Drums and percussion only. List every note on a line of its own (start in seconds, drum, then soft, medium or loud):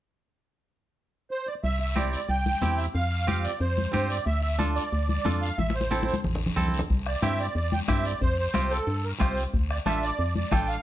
1.64 long guiro medium
1.96 high conga medium
1.96 short guiro medium
2.13 short guiro medium
2.29 long guiro medium
2.46 high conga medium
2.62 high conga medium
2.62 short guiro medium
2.79 short guiro medium
2.96 long guiro medium
3.28 high conga medium
3.28 short guiro medium
3.44 short guiro medium
3.61 long guiro medium
3.78 high conga medium
3.94 high conga medium
3.94 short guiro medium
4.10 short guiro medium
4.27 long guiro medium
4.60 high conga medium
4.60 short guiro medium
4.76 short guiro medium
4.93 long guiro medium
5.09 high conga medium
5.26 high conga medium
5.26 short guiro medium
5.43 short guiro medium
5.59 high conga medium
5.59 long guiro medium
5.70 high conga medium
5.81 high conga medium
5.92 high conga medium
5.92 short guiro medium
6.03 high conga medium
6.09 short guiro medium
6.14 high conga medium
6.24 low conga medium
6.24 long guiro medium
6.35 low conga medium
6.46 low conga medium
6.57 low conga medium
6.57 short guiro medium
6.68 low conga medium
6.74 short guiro medium
6.79 low conga medium
6.90 bombo low medium
6.90 long guiro medium
7.06 bombo rim medium
7.23 bombo rim medium
7.23 high conga medium
7.23 short guiro medium
7.39 short guiro medium
7.56 long guiro medium
7.72 high conga medium
7.88 bombo low medium
7.88 bombo rim medium
7.88 high conga medium
7.88 short guiro medium
8.05 short guiro medium
8.22 bombo low medium
8.22 long guiro medium
8.54 bombo rim medium
8.54 high conga medium
8.54 short guiro medium
8.71 short guiro medium
8.88 long guiro medium
9.20 bombo low medium
9.20 bombo rim medium
9.20 high conga medium
9.20 short guiro medium
9.37 short guiro medium
9.54 bombo low medium
9.54 long guiro medium
9.70 bombo rim medium
9.86 bombo rim medium
9.86 high conga medium
9.86 short guiro medium
10.03 short guiro medium
10.19 long guiro medium
10.36 high conga medium
10.52 bombo low medium
10.52 bombo rim medium
10.52 high conga medium
10.52 short guiro medium
10.68 short guiro medium